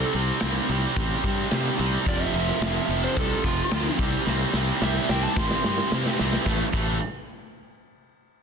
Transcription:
0.00 0.13 C3 medium
0.00 0.13 G3 medium
0.00 0.15 C4 loud
0.00 0.12 A4 medium
0.13 0.31 C2 medium
0.13 0.41 C3 medium
0.13 0.41 G3 medium
0.13 0.43 C4 loud
0.13 ride medium
0.40 0.59 C2 medium
0.40 0.69 C3 medium
0.40 0.69 G3 medium
0.40 0.70 C4 medium
0.40 snare loud
0.40 ride medium
0.69 0.86 C2 medium
0.69 0.95 C3 medium
0.69 0.96 G3 medium
0.69 0.97 C4 loud
0.69 ride medium
0.96 1.13 A1 medium
0.96 1.23 C3 medium
0.96 1.23 G3 medium
0.96 1.25 C4 medium
0.96 kick loud
0.96 ride medium
1.24 1.40 G2 medium
1.24 1.51 C3 medium
1.24 1.51 G3 medium
1.24 1.52 C4 medium
1.24 kick medium
1.24 ride medium
1.51 1.68 C3 medium
1.51 1.79 C3 medium
1.51 1.80 G3 loud
1.51 1.81 C4 loud
1.51 snare loud
1.51 ride loud
1.79 1.96 C2 medium
1.79 2.06 C3 medium
1.79 2.06 G3 medium
1.79 4.01 C4 medium
1.79 ride medium
2.06 2.23 F1 medium
2.06 2.34 F2 loud
2.06 2.35 C3 loud
2.06 2.35 F3 medium
2.06 2.22 D5 loud
2.06 kick loud
2.06 ride medium
2.22 3.02 E5 medium
2.34 2.50 F1 medium
2.34 2.62 F2 medium
2.34 2.63 C3 medium
2.34 2.63 F3 medium
2.34 ride medium
2.49 snare soft
2.61 2.78 F1 loud
2.61 2.89 F2 medium
2.61 2.89 C3 medium
2.61 2.90 F3 loud
2.61 snare loud
2.61 ride medium
2.89 3.05 F1 loud
2.89 3.17 F2 medium
2.89 3.17 C3 medium
2.89 3.18 F3 medium
2.89 ride medium
3.04 3.18 C5 loud
3.17 3.33 C2 medium
3.17 3.45 F2 medium
3.17 3.46 C3 medium
3.17 3.46 F3 medium
3.17 3.44 A4 medium
3.17 kick loud
3.17 ride medium
3.44 3.61 F1 medium
3.44 3.71 F2 medium
3.44 3.72 C3 medium
3.44 3.73 F3 medium
3.44 3.98 F4 medium
3.44 kick medium
3.44 ride medium
3.71 3.88 D2 medium
3.71 3.98 F2 medium
3.71 3.99 C3 loud
3.71 3.99 F3 loud
3.71 snare loud
3.71 ride loud
3.99 4.15 C2 medium
3.99 4.27 C3 medium
3.99 4.28 G3 loud
3.99 4.28 C4 loud
3.99 kick medium
3.99 ride medium
4.27 4.44 C2 medium
4.27 4.54 C3 medium
4.27 4.54 G3 loud
4.27 4.54 C4 loud
4.27 snare medium
4.53 4.70 C2 medium
4.53 4.81 C3 medium
4.53 4.82 G3 medium
4.53 4.82 C4 medium
4.53 snare medium
4.82 4.98 C2 medium
4.82 5.09 C3 medium
4.82 5.09 G3 loud
4.82 5.10 C4 loud
4.82 5.09 E5 medium
4.82 snare medium
5.09 5.26 C2 loud
5.09 5.35 C3 medium
5.09 5.36 G3 medium
5.09 5.36 C4 medium
5.09 5.23 G5 medium
5.09 snare medium
5.24 5.37 A5 medium
5.36 5.53 A1 medium
5.36 5.63 C3 medium
5.36 5.63 G3 medium
5.36 5.63 C4 medium
5.36 5.64 C6 medium
5.36 kick loud
5.36 snare medium
5.51 snare medium
5.64 5.81 G2 medium
5.64 5.91 C3 medium
5.64 5.91 G3 medium
5.64 5.92 C4 medium
5.64 5.92 C6 loud
5.64 snare medium
5.78 snare medium
5.92 6.09 C3 medium
5.92 6.18 C3 medium
5.92 6.18 G3 medium
5.92 6.19 C4 loud
5.92 snare loud
6.06 snare medium
6.19 6.36 C2 medium
6.19 6.45 C3 medium
6.19 6.45 G3 medium
6.19 6.45 C4 medium
6.19 snare loud
6.33 snare medium
6.46 6.62 A1 medium
6.46 6.63 A2 medium
6.46 6.63 E3 medium
6.46 6.64 A3 loud
6.46 kick medium
6.46 snare medium
6.73 6.99 A1 medium
6.73 6.96 A2 loud
6.73 6.96 E3 medium
6.73 6.96 A3 loud
6.73 kick loud
6.73 crash medium

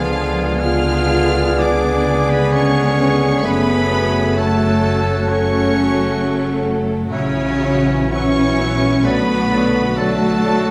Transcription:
0.00 3.39 C#2 medium
0.00 3.39 D3 medium
0.00 0.56 F3 loud
0.00 0.56 F3 medium
0.00 0.58 G#3 medium
0.00 0.58 B3 medium
0.00 3.40 B3 medium
0.00 0.59 D4 medium
0.00 0.62 F4 medium
0.00 0.59 G#4 medium
0.00 4.38 G#4 medium
0.00 3.40 D5 medium
0.00 0.56 F5 loud
0.00 3.40 G#6 medium
0.60 1.56 G#3 medium
0.60 1.56 B3 medium
0.60 1.56 D4 medium
0.60 1.58 F4 medium
0.60 1.58 F4 loud
0.60 1.56 G#4 medium
0.60 1.60 F5 loud
0.60 1.56 F6 loud
1.58 2.50 G#3 medium
1.58 2.50 B3 medium
1.58 2.50 D4 medium
1.58 2.29 D4 medium
1.58 2.29 D4 loud
1.58 2.50 G#4 medium
1.58 2.30 D5 loud
1.58 2.29 D6 loud
2.29 2.52 B3 medium
2.29 2.54 B4 medium
2.29 2.52 B5 loud
2.52 3.41 G#3 medium
2.52 3.41 B3 medium
2.52 3.44 C#4 medium
2.52 3.42 D4 medium
2.52 3.42 G#4 medium
2.52 3.44 C#5 loud
2.52 3.42 C#6 loud
3.43 7.07 F#1 medium
3.43 6.93 C#3 medium
3.43 4.35 F#3 medium
3.43 7.07 A3 medium
3.43 4.35 A3 medium
3.43 6.93 A3 medium
3.43 4.35 B3 loud
3.43 4.36 C#4 medium
3.43 4.36 A4 medium
3.43 4.35 B4 medium
3.43 6.95 C#5 medium
3.43 4.37 B5 loud
3.43 6.82 F#6 medium
4.36 5.26 F#3 medium
4.36 5.28 A3 loud
4.36 5.26 A3 medium
4.36 5.28 A3 medium
4.36 5.27 C#4 medium
4.36 6.95 F#4 medium
4.36 5.27 A4 medium
4.36 5.30 A4 medium
4.36 5.29 A5 loud
5.27 7.07 F#3 medium
5.27 7.07 A3 medium
5.27 6.64 C#4 loud
5.27 7.07 C#4 medium
5.27 6.61 C#4 medium
5.27 7.07 A4 medium
5.27 6.64 C#5 loud
5.27 6.64 C#6 loud
7.10 9.01 A#1 medium
7.10 8.08 C#3 loud
7.10 8.09 C#3 loud
7.10 9.00 E3 medium
7.10 8.10 F#3 medium
7.10 9.00 F#3 medium
7.10 7.28 F#3 medium
7.10 8.10 C#4 medium
7.10 8.14 C#4 medium
7.10 8.10 E4 medium
7.10 10.71 F#4 medium
7.10 8.10 F#4 medium
7.10 8.08 C#5 loud
7.10 7.28 E5 medium
7.10 7.23 F#6 medium
7.61 7.77 F#3 medium
7.61 7.79 E5 medium
7.61 7.73 F#6 medium
8.11 8.28 F#3 medium
8.11 9.03 F#3 medium
8.11 9.04 C#4 loud
8.11 8.58 C#4 medium
8.11 9.03 C#4 medium
8.11 9.03 E4 medium
8.11 9.03 F#4 medium
8.11 9.06 C#5 loud
8.11 8.30 E5 medium
8.11 9.02 C#6 loud
8.11 8.24 F#6 medium
8.59 8.75 F#3 medium
8.59 9.04 B3 medium
8.59 8.77 E5 medium
8.59 8.70 F#6 medium
9.04 10.71 B1 medium
9.04 10.71 D3 medium
9.04 9.20 F#3 medium
9.04 9.95 F#3 medium
9.04 9.96 A3 medium
9.04 10.71 A3 medium
9.04 9.96 B3 loud
9.04 9.96 B3 medium
9.04 9.96 D4 medium
9.04 9.95 F#4 medium
9.04 9.98 B4 loud
9.04 9.22 D5 medium
9.04 9.97 B5 loud
9.04 9.16 A6 medium
9.50 9.66 F#3 medium
9.50 9.68 D5 medium
9.50 9.62 A6 medium
9.96 10.13 F#3 medium
9.96 10.71 F#3 medium
9.96 10.71 A3 medium
9.96 10.71 D4 medium
9.96 10.71 F#4 medium
9.96 10.71 A4 loud
9.96 10.13 D5 medium
9.96 10.71 A5 loud
9.96 10.08 A6 medium
10.44 10.60 F#3 medium
10.44 10.60 D5 medium
10.44 10.54 A6 medium

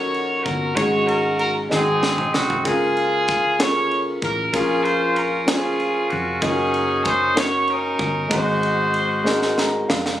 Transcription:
0.00 0.42 A#1 loud
0.00 0.79 A#2 medium
0.00 0.79 A#3 medium
0.00 0.76 C#4 medium
0.00 0.77 D#4 medium
0.00 0.74 F#4 medium
0.00 0.78 F#4 medium
0.00 0.79 A4 medium
0.00 0.79 A#4 medium
0.00 0.42 C#5 loud
0.14 ride soft
0.44 0.75 G1 medium
0.44 0.76 A#4 loud
0.44 kick medium
0.44 ride soft
0.75 1.67 G#1 loud
0.75 1.67 G#2 medium
0.75 1.58 G#3 medium
0.75 1.59 C#4 medium
0.75 1.59 D#4 medium
0.75 1.60 F#4 medium
0.75 1.56 F#4 medium
0.75 1.60 G#4 medium
0.75 1.08 C#5 loud
0.75 kick medium
0.75 ride medium
1.07 1.38 A#4 medium
1.07 ride soft
1.39 1.54 A#4 medium
1.39 ride soft
1.69 2.30 G#1 loud
1.69 2.61 G#2 medium
1.69 2.52 G#3 medium
1.69 2.53 C4 medium
1.69 2.53 D#4 medium
1.69 2.54 F#4 medium
1.69 2.54 G#4 medium
1.69 snare medium
1.73 2.63 C4 medium
1.73 2.63 D#4 medium
1.73 2.31 G#4 loud
2.03 snare medium
2.18 mid tom medium
2.34 2.64 C2 medium
2.34 2.65 F#4 medium
2.34 snare medium
2.50 floor tom medium
2.64 4.18 C#2 loud
2.64 3.55 C#3 medium
2.64 3.47 A#3 medium
2.64 3.47 C#4 medium
2.64 3.47 F4 medium
2.64 3.48 G#4 medium
2.64 3.60 G#4 loud
2.64 3.48 A#4 medium
2.64 kick loud
2.64 ride medium
2.69 3.57 F4 medium
2.97 ride soft
3.28 kick medium
3.28 ride soft
3.58 4.41 A#3 medium
3.58 4.41 C#4 medium
3.58 4.42 F4 medium
3.58 4.42 G#4 medium
3.58 3.67 A4 medium
3.58 3.96 C#5 loud
3.58 snare loud
3.58 ride medium
3.68 4.46 A#4 medium
3.91 ride soft
4.22 4.51 A1 medium
4.22 4.52 A#4 medium
4.22 kick medium
4.22 ride soft
4.52 6.07 A#1 loud
4.52 5.44 A#2 medium
4.52 5.35 A#3 medium
4.52 5.36 C#4 medium
4.52 5.36 F4 medium
4.52 5.45 F4 medium
4.52 4.85 G#4 medium
4.52 5.36 G#4 medium
4.52 5.37 A#4 medium
4.52 kick loud
4.52 ride medium
4.57 5.45 C#4 medium
4.84 5.16 C5 medium
4.84 ride soft
5.16 5.48 A#4 medium
5.16 ride soft
5.46 6.29 A#3 medium
5.46 6.29 C#4 medium
5.46 6.30 F4 medium
5.46 6.30 G#4 medium
5.46 6.11 G#4 medium
5.46 6.30 C5 medium
5.46 snare loud
5.46 ride medium
5.50 6.39 C#4 medium
5.50 6.40 F4 medium
5.80 ride soft
6.10 6.40 F1 medium
6.10 6.42 F#4 medium
6.10 ride soft
6.41 7.96 F#1 loud
6.41 7.24 A#3 medium
6.41 7.24 C#4 medium
6.41 7.34 C#4 medium
6.41 7.25 D#4 medium
6.41 6.49 F4 medium
6.41 7.05 G#4 medium
6.41 7.25 A#4 medium
6.41 kick medium
6.41 ride medium
6.45 7.34 D#4 medium
6.50 7.28 F#4 medium
6.74 ride soft
7.05 7.37 C5 medium
7.05 kick medium
7.05 ride soft
7.34 8.18 A#3 medium
7.34 8.18 C#4 medium
7.34 8.19 D#4 medium
7.34 8.19 F#4 medium
7.34 8.20 A#4 medium
7.34 7.69 C#5 loud
7.34 snare loud
7.34 ride medium
7.68 8.28 D#4 medium
7.68 8.32 A#4 loud
7.68 ride soft
7.72 8.29 C#4 medium
7.99 8.28 G1 loud
7.99 kick medium
7.99 ride soft
8.28 9.85 G#1 loud
8.28 9.21 G#2 medium
8.28 9.12 G#3 medium
8.28 8.37 B3 medium
8.28 9.13 D#4 medium
8.28 9.14 F#4 medium
8.28 9.14 G#4 medium
8.28 kick loud
8.28 ride medium
8.34 9.16 C4 medium
8.34 9.55 D#4 medium
8.34 9.55 F#4 medium
8.34 9.59 C5 medium
8.63 ride soft
8.94 ride soft
9.24 10.07 G#3 medium
9.24 10.08 C4 medium
9.24 10.08 D#4 medium
9.24 10.09 F#4 medium
9.24 10.09 A#4 medium
9.24 snare medium
9.42 snare soft
9.58 9.87 A#5 medium
9.58 snare medium
9.89 10.18 F1 medium
9.89 10.18 F5 medium
9.89 snare medium
10.06 snare medium

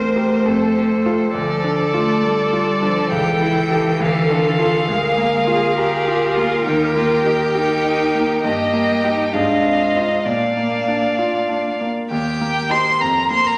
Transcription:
0.00 0.43 E2 soft
0.00 1.31 A3 medium
0.00 0.34 C4 soft
0.00 0.46 A#4 soft
0.00 0.47 C5 medium
0.00 1.31 C5 soft
0.16 0.43 G4 soft
0.16 0.43 A#4 soft
0.45 1.32 F2 soft
0.45 4.00 A4 soft
0.45 0.75 A4 soft
0.75 1.23 C4 soft
0.75 0.84 G4 soft
1.06 1.32 F4 soft
1.06 1.14 F4 soft
1.06 1.32 A4 soft
1.34 3.08 D2 soft
1.34 1.92 F3 medium
1.34 3.13 A4 medium
1.34 3.09 D5 soft
1.64 2.12 D4 soft
1.93 2.24 A3 medium
1.93 2.41 F4 soft
2.23 2.81 G3 medium
2.23 2.71 A4 soft
2.53 3.00 F4 soft
2.82 3.13 F3 medium
2.82 3.12 D4 soft
3.11 3.98 C#2 medium
3.11 4.88 E3 medium
3.11 3.40 G4 medium
3.11 4.03 G5 medium
3.41 3.70 E4 medium
3.41 3.89 E4 soft
3.70 3.98 G4 soft
3.70 3.78 A4 medium
3.70 3.98 A4 soft
4.00 4.86 D2 medium
4.00 4.31 G4 medium
4.00 4.90 A4 medium
4.00 6.65 F5 medium
4.30 4.77 D4 soft
4.30 4.59 F4 medium
4.59 4.86 F4 soft
4.59 6.62 G#4 medium
4.59 4.86 A4 soft
4.88 6.61 D2 medium
4.88 5.50 G#3 medium
4.88 8.43 A#4 medium
5.17 5.65 A#3 soft
5.47 5.95 F4 soft
5.47 5.76 G#4 medium
5.77 6.38 G4 medium
5.77 6.25 A#4 medium
6.08 6.54 F4 soft
6.36 6.66 A#3 soft
6.36 6.64 F4 medium
6.65 8.40 D#2 medium
6.65 6.94 D#4 medium
6.65 8.40 G4 medium
6.65 8.40 G5 medium
6.94 7.43 A#3 soft
6.94 7.23 F4 medium
7.24 7.73 D#4 soft
7.24 7.32 G4 medium
7.53 8.41 D#4 medium
7.53 8.02 G4 soft
7.84 8.32 D#4 soft
8.15 8.44 A#3 soft
8.43 9.31 G2 soft
8.43 9.04 A#3 medium
8.43 9.36 G4 medium
8.43 9.30 D#5 soft
8.43 9.35 G5 soft
8.73 9.22 A#3 soft
9.03 9.35 D#4 medium
9.03 9.31 D#4 soft
9.03 9.31 G4 soft
9.33 10.23 G#2 soft
9.33 9.94 D4 medium
9.33 10.27 F4 soft
9.33 10.26 D#5 soft
9.33 10.25 F5 soft
9.65 10.14 C4 soft
9.95 10.03 C4 soft
9.95 10.23 D#4 soft
9.95 10.23 F4 soft
10.24 12.06 A#2 soft
10.24 11.76 A#3 medium
10.24 11.64 D4 soft
10.24 11.89 D5 soft
10.24 11.87 F5 soft
10.57 11.06 A#3 soft
10.88 11.37 D4 soft
11.18 11.68 F4 soft
11.49 11.98 D4 soft
11.81 12.11 A#3 soft
12.10 12.98 D#2 soft
12.10 12.71 G4 medium
12.10 12.73 G5 medium
12.41 12.89 A#3 soft
12.70 12.92 A#3 soft
12.70 12.92 D#4 soft
12.70 12.98 D#4 soft
12.70 12.98 G4 soft
12.70 13.01 C5 medium
12.70 13.02 C6 medium
13.00 13.58 F2 soft
13.00 13.30 A#4 soft
13.00 13.30 A#5 medium
13.30 13.58 A#3 soft
13.30 13.47 C5 medium
13.30 13.48 C6 medium
13.45 13.58 A#4 medium
13.45 13.58 A#5 medium

